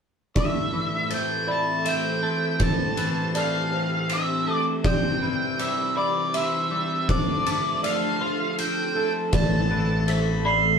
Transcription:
0.35 A2 E3 C4 A4 C5 D5 E5, kick, ride
0.73 E3
1.10 A3 C5, ride
1.14 G5
1.47 E4 D5
1.51 A5
1.85 C4 E5 G5, ride
2.23 A3
2.60 A2 G4 C5 A5, kick, ride
2.97 E3, ride
3.34 A3 D5 F5, ride
3.72 C5
4.09 C4 E5, ride
4.46 A3 A4
4.84 C3 C5 D5 G5, kick, ride
5.22 E3
5.59 G3 C5 E5, ride
5.97 E4 D5
6.34 C4 E5, ride
6.71 G3
7.09 D3 F3 D4 A4 C5 D5, kick, ride
7.46 A3, ride
7.83 A3 D5 F5, ride
8.21 F4 C5
8.59 C4 G5, ride
8.95 A3 A4
9.32 A1 A2 E3 C4 D5 A5, kick, ride
9.71 E3
10.07 A3 C5 B5, ride
10.45 E4 D5 C6

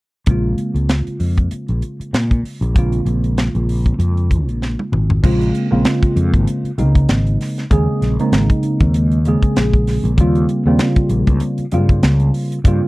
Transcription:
0.26 A#1 C#3 G#3 A#3 C4, kick, closed hi-hat
0.31 F4
0.58 closed hi-hat
0.74 C#2, closed hi-hat
0.89 snare, closed hi-hat
1.07 muted fretless electric bass stroke, closed hi-hat
1.20 F2, open hi-hat
1.37 kick, closed hi-hat
1.51 muted fretless electric bass stroke, closed hi-hat
1.68 A#1, closed hi-hat
1.82 closed hi-hat
2.00 muted fretless electric bass stroke, closed hi-hat
2.13 A#2, snare, closed hi-hat
2.31 kick, closed hi-hat
2.43 muted fretless electric bass stroke, open hi-hat
2.61 A#1, closed hi-hat
2.74 C#3 G#3 A#3 C4, kick, closed hi-hat
2.79 F4
2.92 closed hi-hat
3.06 A#1, closed hi-hat
3.24 closed hi-hat
3.38 snare, closed hi-hat
3.55 A#1, closed hi-hat
3.69 open hi-hat
3.86 kick, closed hi-hat
3.99 F2, closed hi-hat
4.17 closed hi-hat
4.31 kick, closed hi-hat
4.47 A#1, closed hi-hat
4.62 snare
4.79 high tom
4.92 G#1, mid tom
5.10 floor tom
5.23 A#1 C#3 G#3 A#3 C4 F4, kick, crash
5.41 closed hi-hat
5.55 closed hi-hat
5.71 A#1 C#3 G#3 A#3 C4 F4
5.85 snare, closed hi-hat
6.03 muted fretless electric bass stroke, kick, closed hi-hat
6.16 F2, closed hi-hat
6.33 G#1, kick, closed hi-hat
6.47 closed hi-hat
6.64 muted fretless electric bass stroke, closed hi-hat
6.78 C#2 C#3 G#3 A#3 C4 D#4, closed hi-hat
6.95 kick, closed hi-hat
7.09 G#1, snare, closed hi-hat
7.27 closed hi-hat
7.41 snare, open hi-hat
7.58 snare, closed hi-hat
7.70 D#2 C#3 G#3 A#3 C4 G#4, kick, closed hi-hat
8.02 A#1, snare, closed hi-hat
8.19 C#3 G#3 A#3 C4 D#4, closed hi-hat
8.32 G#1, snare, closed hi-hat
8.50 kick, closed hi-hat
8.63 muted fretless electric bass stroke, closed hi-hat
8.80 D#2, kick, closed hi-hat
8.94 closed hi-hat
9.12 closed hi-hat
9.25 C#3 G#3 A#3 C4 G#4, closed hi-hat
9.43 muted fretless electric bass stroke, kick, closed hi-hat
9.56 A#1, snare, closed hi-hat
9.73 kick, closed hi-hat
9.87 snare, open hi-hat
10.04 A#1, closed hi-hat
10.17 D#2 C#3 G3 A#3 C4 F4, kick, closed hi-hat
10.35 closed hi-hat
10.49 closed hi-hat
10.66 D#2 C#3 G3 A#3 C4 F4
10.79 snare, closed hi-hat
10.96 muted fretless electric bass stroke, kick, closed hi-hat
11.09 A#1, closed hi-hat
11.27 C#2, kick, closed hi-hat
11.40 closed hi-hat
11.58 muted fretless electric bass stroke, closed hi-hat
11.72 G2 C#3 G3 A#3 C4 F4, closed hi-hat
11.89 kick, closed hi-hat
12.03 C#2, snare, closed hi-hat
12.20 closed hi-hat
12.34 open hi-hat
12.52 closed hi-hat
12.64 G2 C#3 G3 A#3 C4 F4, kick, closed hi-hat

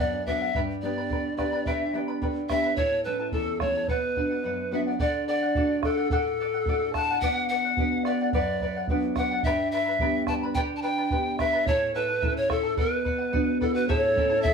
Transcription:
Already playing: B3 D4 F#4
0.00 F#2 B4 D5 F#5
0.26 B3 D4 F#4 B4 D5 E5 F#5, bombo low
0.41 D5 F#5
0.54 G2 G4 B4 D5 G5 B5, bombo low
0.82 B3 D4 G4 B4 D5 G5 B5
0.98 B4 D5 B5
1.09 D3 B4 D5 G5 B5, bombo low
1.37 B3 D4 G4 B4 D5 G5 B5, bombo rim, bombo low
1.53 B4 D5 B5
1.65 D3 G4 B4 D5 E5 G5 B5, bombo low
1.93 B3 D4 G4 B4 D5 G5 B5
2.08 B4 D5 B5
2.22 D3 B4 D5 G5 B5, bombo low
2.49 B3 D4 G4 B4 D5 E5 G5 B5, bombo rim, bombo low
2.64 B4 D5 B5
2.76 A2 E4 A4 C#5 E5 A5, bombo low
3.04 A3 C#4 E4 A4 B4 E5 A5
3.20 E4 A4 A5
3.32 E2 E4 A4 E5 A5, bombo low
3.60 A3 C#4 E4 A4 C#5 E5 A5, bombo rim, bombo low
3.74 E4 A4 A5
3.88 B2 B4 D5 F#5, bombo low
4.16 B3 D4 F#4 B4 D5 F#5, bombo low
4.31 D5 F#5
4.44 F#2 B4 D5 F#5
4.71 B3 D4 F#4 B4 D5 E5 F#5
4.87 D5 F#5
5.00 D3 A4 D5 F#5, bombo low
5.28 A4 D5 F#5
5.42 D5 F#5
5.55 A3 D4 F#4 A4 D5 F#5, bombo low
5.83 A4 D5 F#5, bombo rim, bombo low
5.97 D5 F#5
6.10 A2 A4 D5 F#5, bombo low
6.40 A4 D5 F#5
6.54 D5 F#5
6.66 A3 D4 F#4 A4 D5 F#5, bombo low
6.93 A4 D5 A5, bombo rim, bombo low
6.97 F#5
7.11 D5 F#5
7.21 B2 B4 D5 F#5, bombo low
7.49 B4 D5 F#5
7.65 D5 F#5
7.77 B3 D4 F#4 B4 D5 F#5, bombo low
8.05 B4 D5 F#5, bombo rim
8.21 D5 F#5
8.33 F#2 B4 D5 F#5, bombo low
8.60 B4 D5 F#5, bombo low
8.76 D5 F#5
8.88 B3 D4 F#4 B4 D5 F#5, bombo low
9.16 B4 D5 F#5, bombo rim, bombo low
9.31 D5 F#5
9.43 G2 G4 B4 D5 E5 G5 B5, bombo low
9.71 B4 D5 E5 G5 B5
9.87 B4 D5 B5
9.99 B3 D4 G4 B4 D5 G5 B5, bombo low
10.27 B4 D5 G5 A5 B5, bombo rim, bombo low
10.43 B4 D5 B5
10.55 D3 G4 B4 D5 G5 B5, bombo low
10.76 A5
10.82 B4 D5 G5 B5
10.98 B4 D5 B5
11.10 B3 D4 G4 B4 D5 G5 B5, bombo low
11.38 B4 D5 E5 G5 B5, bombo rim, bombo low
11.53 B4 D5 B5
11.66 A2 E4 A4 C#5 E5 A5, bombo low
11.94 E4 A4 B4 E5 A5
12.08 E4 A4 A5
12.22 A3 C#4 E4 A4 E5 A5, bombo low
12.37 C#5
12.49 E4 A4 E5 A5, bombo rim, bombo low
12.63 E4 A4 A5
12.77 B2 B4 D5 F#5, bombo low
13.05 B4 D5 F#5, bombo low
13.18 D5 F#5
13.32 B3 D4 F#4 B4 D5 F#5, bombo low
13.61 E4 A4 B4 D5 F#5, bombo low
13.74 F#4 B4 D5 F#5
13.88 A2 E4 A4 C#5 E5 A5, bombo low
14.16 A3 C#4 E4 A4 E5 A5, bombo low
14.30 E4 A4 A5
14.42 E2 E4 A4 E5, bombo low
14.46 A4 A5

